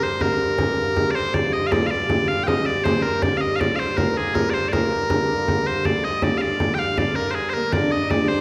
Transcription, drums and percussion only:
0.21 frame drum medium
0.58 frame drum medium
0.96 frame drum medium
1.34 frame drum medium
1.72 frame drum medium
2.09 frame drum medium
2.48 frame drum medium
2.67 frame drum soft
2.85 frame drum medium
3.04 frame drum soft
3.23 frame drum medium
3.42 frame drum soft
3.61 frame drum medium
3.98 frame drum medium
4.35 frame drum medium
4.73 frame drum medium
5.10 frame drum medium
5.48 frame drum medium
5.85 frame drum medium
6.22 frame drum medium
6.60 frame drum medium
6.98 frame drum medium
7.54 frame drum soft
7.73 frame drum medium
7.92 frame drum soft
8.10 frame drum medium

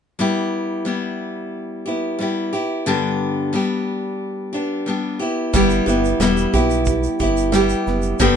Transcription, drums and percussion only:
5.54 kick loud
5.54 shaker medium
5.70 shaker soft
5.87 shaker soft
6.05 shaker medium
6.21 snare loud
6.21 shaker medium
6.37 shaker soft
6.54 kick medium
6.54 shaker medium
6.54 shaker soft
6.70 shaker soft
6.86 kick medium
6.86 shaker medium
6.87 shaker medium
7.04 shaker soft
7.19 kick medium
7.19 shaker soft
7.37 shaker medium
7.52 snare loud
7.52 shaker medium
7.69 shaker medium
7.87 snare soft
7.87 shaker medium
8.02 shaker soft
8.19 kick loud
8.19 shaker medium

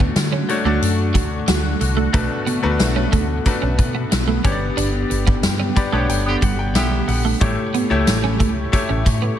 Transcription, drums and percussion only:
0.00 kick medium
0.16 snare loud
0.16 closed hi-hat medium
0.16 tambourine medium
0.49 closed hi-hat medium
0.82 closed hi-hat medium
1.15 kick medium
1.15 closed hi-hat medium
1.48 snare loud
1.48 closed hi-hat loud
1.48 tambourine medium
1.81 closed hi-hat medium
2.14 kick loud
2.14 closed hi-hat medium
2.47 closed hi-hat medium
2.79 snare loud
2.79 closed hi-hat medium
2.79 tambourine medium
3.13 kick medium
3.13 closed hi-hat medium
3.46 kick medium
3.46 closed hi-hat medium
3.79 kick medium
3.79 closed hi-hat medium
4.12 snare loud
4.12 closed hi-hat loud
4.12 tambourine medium
4.44 kick loud
4.44 closed hi-hat medium
4.78 closed hi-hat medium
5.11 closed hi-hat medium
5.27 kick medium
5.43 snare loud
5.43 closed hi-hat medium
5.43 tambourine medium
5.76 kick medium
5.76 closed hi-hat medium
6.09 closed hi-hat medium
6.42 kick medium
6.42 closed hi-hat medium
6.75 snare loud
6.75 closed hi-hat loud
6.75 tambourine medium
7.08 open hi-hat medium
7.41 kick loud
7.41 closed hi-hat medium
7.74 closed hi-hat medium
8.07 snare loud
8.07 closed hi-hat medium
8.07 tambourine medium
8.40 kick medium
8.40 closed hi-hat medium
8.73 kick medium
8.73 closed hi-hat medium
9.06 kick medium
9.06 closed hi-hat medium

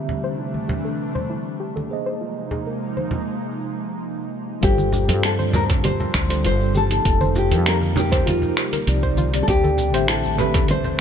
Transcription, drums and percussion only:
0.09 low conga medium
0.54 high conga medium
0.69 low conga medium
1.15 low conga medium
1.77 high conga medium
2.51 low conga medium
2.97 high conga medium
3.11 low conga medium
4.63 kick loud
4.63 closed hi-hat soft
4.63 shaker soft
4.78 high conga medium
4.78 shaker soft
4.92 low conga medium
4.92 shaker medium
5.09 closed hi-hat medium
5.09 shaker soft
5.23 finger snap medium
5.23 closed hi-hat soft
5.23 shaker soft
5.39 high conga medium
5.39 shaker soft
5.53 mid tom medium
5.53 low conga loud
5.53 shaker medium
5.70 kick loud
5.70 closed hi-hat medium
5.70 mid tom medium
5.70 shaker soft
5.84 closed hi-hat soft
5.84 high conga medium
5.84 shaker soft
6.00 low conga medium
6.00 shaker soft
6.14 finger snap medium
6.14 kick loud
6.14 shaker medium
6.30 closed hi-hat medium
6.30 high conga medium
6.30 shaker soft
6.45 closed hi-hat soft
6.45 shaker soft
6.61 shaker soft
6.75 high conga medium
6.75 shaker medium
6.91 closed hi-hat medium
6.91 shaker soft
7.05 kick loud
7.05 closed hi-hat soft
7.05 shaker soft
7.21 high conga loud
7.21 shaker soft
7.35 low conga medium
7.35 shaker medium
7.52 closed hi-hat medium
7.52 shaker soft
7.66 finger snap medium
7.66 closed hi-hat soft
7.66 shaker soft
7.82 high conga medium
7.82 shaker soft
7.96 mid tom medium
7.96 low conga loud
7.96 shaker medium
8.12 kick loud
8.12 closed hi-hat medium
8.12 mid tom medium
8.12 shaker soft
8.27 closed hi-hat soft
8.27 high conga medium
8.27 shaker soft
8.42 low conga medium
8.42 shaker soft
8.57 finger snap medium
8.57 shaker medium
8.73 closed hi-hat medium
8.73 high conga medium
8.73 shaker soft
8.87 closed hi-hat soft
8.87 shaker soft
9.03 kick medium
9.03 shaker soft
9.17 high conga medium
9.17 shaker medium
9.34 closed hi-hat medium
9.34 shaker soft
9.48 kick loud
9.48 closed hi-hat soft
9.48 shaker soft
9.64 high conga medium
9.64 shaker soft
9.78 low conga medium
9.78 shaker medium
9.94 closed hi-hat medium
9.94 shaker soft
10.08 finger snap medium
10.08 closed hi-hat soft
10.08 shaker soft
10.24 high conga medium
10.24 shaker soft
10.38 mid tom medium
10.38 low conga loud
10.38 shaker medium
10.54 kick loud
10.54 closed hi-hat medium
10.54 mid tom medium
10.54 shaker soft
10.68 closed hi-hat soft
10.68 high conga medium
10.68 shaker soft
10.84 low conga medium
10.84 shaker soft

